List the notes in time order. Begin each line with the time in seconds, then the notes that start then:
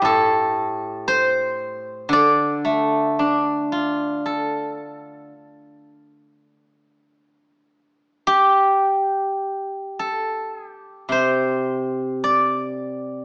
Already playing: G4
0.02 A2 A4
1.08 C5
2.09 D3 D5
2.65 A3
3.19 D4
3.72 F4
4.26 A4
8.27 G4
9.99 A4
10.55 G#4
10.68 G4
11.09 C3 C5
12.24 D5